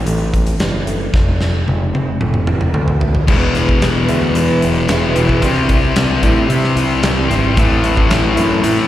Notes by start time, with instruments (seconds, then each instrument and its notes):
Already playing: steel-string acoustic guitar A2 E3 C4
0.06 picked electric bass A1, steel-string acoustic guitar A3, closed hi-hat
0.33 steel-string acoustic guitar C4, kick, closed hi-hat
0.46 closed hi-hat
0.59 picked electric bass F#1, steel-string acoustic guitar E3, snare, closed hi-hat
0.86 steel-string acoustic guitar A3, closed hi-hat
1.14 picked electric bass F1, steel-string acoustic guitar F2, kick, snare
1.41 steel-string acoustic guitar A3, snare
1.68 picked electric bass F1, steel-string acoustic guitar F3, high tom
1.93 picked electric bass F1, steel-string acoustic guitar C4, high tom
2.20 picked electric bass F1, steel-string acoustic guitar A3, mid tom
2.34 mid tom
2.47 steel-string acoustic guitar C4, mid tom
2.61 mid tom
2.74 picked electric bass D2, steel-string acoustic guitar F3, mid tom
2.88 floor tom
3.01 steel-string acoustic guitar A3, floor tom
3.15 floor tom
3.27 picked electric bass E1, steel-string acoustic guitar E2 B2 E3 G#3 B3 E4, kick, crash
3.54 steel-string acoustic guitar E3 G#3 B3 E4, closed hi-hat
3.69 kick
3.80 picked electric bass E1, steel-string acoustic guitar E3 G#3 B3 E4, snare, closed hi-hat
4.08 picked electric bass D2, steel-string acoustic guitar E2 B2 E3 G#3 B3 E4, closed hi-hat
4.35 picked electric bass E2, steel-string acoustic guitar E3 G#3 B3 E4, closed hi-hat
4.62 picked electric bass E1, steel-string acoustic guitar E3 G#3 B3 E4, closed hi-hat
4.89 picked electric bass E1, steel-string acoustic guitar E2 B2 E3 G#3 B3 E4, snare, closed hi-hat
5.16 picked electric bass E1, distorted electric guitar E2 B2, steel-string acoustic guitar E3 G#3 B3 E4, closed hi-hat
5.29 kick
5.42 picked electric bass C2, steel-string acoustic guitar C3 E3 G3 C4 E4, kick, closed hi-hat
5.69 steel-string acoustic guitar G3 C4 E4, kick, closed hi-hat
5.96 picked electric bass C2, steel-string acoustic guitar E3 G3 C4 E4, snare, closed hi-hat
6.23 picked electric bass A2, steel-string acoustic guitar C3 E3 G3 C4 E4, kick, closed hi-hat
6.49 picked electric bass C3, steel-string acoustic guitar E3 G3 C4 E4, closed hi-hat
6.64 snare
6.76 picked electric bass C2, steel-string acoustic guitar G3 C4 E4, closed hi-hat
7.03 picked electric bass C2, steel-string acoustic guitar C3 E3 G3 C4 E4, snare, closed hi-hat
7.30 picked electric bass G#1, distorted electric guitar C3, steel-string acoustic guitar G3 C4 E4, closed hi-hat
7.56 picked electric bass A1, steel-string acoustic guitar A2 E3 A3 C4 E4, kick, closed hi-hat
7.83 steel-string acoustic guitar A3 C4 E4, closed hi-hat
7.97 kick
8.09 picked electric bass A1, steel-string acoustic guitar E3 A3 C4 E4, snare, closed hi-hat
8.36 picked electric bass F#2, steel-string acoustic guitar A2 E3 A3 C4 E4, closed hi-hat
8.63 picked electric bass A2, steel-string acoustic guitar E3 A3 C4 E4, closed hi-hat